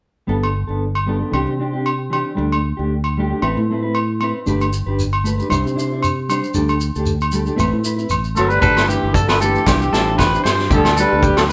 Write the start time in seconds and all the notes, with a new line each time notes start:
0.27 G1 G3 B3 D4 A4
0.43 low agogo
0.67 G1 B3 D4 A4
0.95 low agogo
1.06 G3 B3 D4 A4
1.19 B3 D4 A4
1.32 C2 E3 C4 D4 G4, low agogo
1.47 C3
1.59 C4 D4 G4, muted clean electric guitar stroke
1.73 C4 D4 G4
1.86 low agogo
2.10 E3 C4 D4 G4, low agogo
2.35 D2 G3 A3 D4, muted clean electric guitar stroke
2.52 low agogo
2.77 D2 A3 D4 G4
3.04 low agogo
3.17 G3 A3 D4 G4
3.30 A3 D4 G4
3.42 A1 A3 C4 E4 B4, low agogo
3.57 A2
3.70 A3 C4 E4 B4
3.83 C4 E4 B4
3.95 low agogo
4.20 C4 E4 B4, muted clean electric guitar stroke, low agogo
4.46 G1 A3 D4 G4 B4, shekere
4.61 low agogo, shekere
4.73 shekere
4.86 G1 D4 G4 B4
4.99 shekere
5.13 low agogo
5.24 A3 B4, muted clean electric guitar stroke, shekere
5.38 D4 G4 B4, shekere
5.49 C2 G3 D4 E4 C5, low agogo, shekere
5.66 C3, shekere
5.75 D4 E4, muted clean electric guitar stroke
5.79 C5, shekere
5.91 D4 E4 C5
6.03 low agogo, shekere
6.29 G3 D4 C5, muted clean electric guitar stroke, low agogo, shekere
6.44 shekere
6.54 D2 G3 D4 G4 A4, shekere
6.69 low agogo, shekere
6.80 shekere
6.96 D2 D4 G4 A4, shekere
7.06 shekere
7.21 low agogo, shekere
7.32 G3 G4 A4, shekere
7.45 D4 G4 A4, shekere
7.56 A1 A3 C4 E4 B4, low agogo, shekere
7.73 A2
7.84 E4 B4, shekere
7.96 C4 E4 B4, shekere
8.10 A1, low agogo, shekere
8.24 shekere
8.36 G1 F#3 A3 C4 E4 A4 B4, low agogo, shekere
8.48 G3 B4, shekere
8.60 G1 G3 A3 D4 G4 A4 B4, kick, shekere
8.77 snare, low agogo, shekere
8.88 E3 A3 D4 G4 B4, shekere
9.03 G1 D4 G4 B4
9.14 D3 A4, kick, shekere
9.28 B4, snare, low agogo
9.40 E3 A3 D4 G4 A4 B4, shekere
9.55 shekere
9.66 C2 G3 D4 E4 G4, muted clean electric guitar stroke, kick, snare, low agogo, shekere
9.82 shekere
9.92 A1 G3 D4 A4 C5, muted clean electric guitar stroke, snare, shekere
10.06 D4 E4 C5
10.18 B4, kick, snare, low agogo, shekere
10.32 D4 E4 C5, shekere
10.44 G2 C5, snare, low agogo, shekere
10.59 snare
10.70 D2 D3 G3 D4 G4 A4, kick, shekere
10.85 snare, low agogo, shekere
10.97 G3 D4 G4 A4 B4, shekere
11.10 D2 D4 G4 A4
11.23 G4, kick, shekere
11.37 F#3 A4, snare, low agogo
11.49 B4